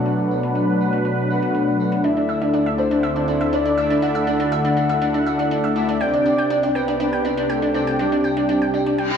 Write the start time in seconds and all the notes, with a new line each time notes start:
Already playing: B2 F#3 D4
0.06 B2 A3 D4 F#4 B4 F#5, closed hi-hat, tambourine
0.19 tambourine
0.31 tambourine
0.43 closed hi-hat, tambourine
0.55 closed hi-hat, tambourine
0.69 tambourine
0.81 tambourine
0.93 closed hi-hat, tambourine
1.05 closed hi-hat, tambourine
1.18 tambourine
1.30 B2 A3 D4 F#4 B4 F#5, tambourine
1.43 closed hi-hat, tambourine
1.55 closed hi-hat, tambourine
1.68 tambourine
1.80 tambourine
1.92 closed hi-hat, tambourine
2.04 D2 D3 A3 D4 E4 A4 D5 E5, closed hi-hat, tambourine
2.17 D4, tambourine
2.29 E5, tambourine
2.42 D4, closed hi-hat, tambourine
2.54 D4, closed hi-hat, tambourine
2.66 E5, tambourine
2.78 D4 C5, tambourine
2.91 D4, closed hi-hat, tambourine
3.03 E5, closed hi-hat, tambourine
3.16 D4, tambourine
3.28 D4, tambourine
3.41 E5, closed hi-hat, tambourine
3.53 D4 D5, closed hi-hat, tambourine
3.65 D4, tambourine
3.78 D3 A3 D4 E4 D5 E5, tambourine
3.90 D4, closed hi-hat, tambourine
4.02 D3 A3 D4 E4 D5 E5 F#5, closed hi-hat, tambourine
4.15 E5, tambourine
4.27 D4, tambourine
4.40 D4, closed hi-hat, tambourine
4.52 E5, closed hi-hat, tambourine
4.65 D4, tambourine
4.77 D4, tambourine
4.90 E5, closed hi-hat, tambourine
5.02 D4, closed hi-hat, tambourine
5.14 D4, tambourine
5.26 E5, tambourine
5.39 D4, closed hi-hat, tambourine
5.51 D4, closed hi-hat, tambourine
5.64 E5, tambourine
5.76 A3 D4 E4 D5 E5, tambourine
5.89 D4, closed hi-hat, tambourine
6.01 C2 C3 C4 D4 G4 D5 G5, closed hi-hat, tambourine
6.14 D4, tambourine
6.26 D4, tambourine
6.38 G5, closed hi-hat, tambourine
6.50 D4, closed hi-hat, tambourine
6.63 D4, tambourine
6.75 B4 G5, tambourine
6.88 D4, closed hi-hat, tambourine
7.00 D4, closed hi-hat, tambourine
7.13 G5, tambourine
7.25 D4, tambourine
7.38 D4, closed hi-hat, tambourine
7.50 A4 G5, closed hi-hat, tambourine
7.62 D4, tambourine
7.74 C3 C4 D4 G4 D5 G5, tambourine
7.87 G5, closed hi-hat, tambourine
7.99 C3 C4 D4 G4 D5 G5, closed hi-hat, tambourine
8.12 D4, tambourine
8.24 G5, tambourine
8.37 D4, closed hi-hat, tambourine
8.49 D4, closed hi-hat, tambourine
8.62 G5, tambourine
8.74 D4, tambourine
8.86 D4, closed hi-hat, tambourine
8.98 G5, closed hi-hat, tambourine, reverse cymbal
9.11 D4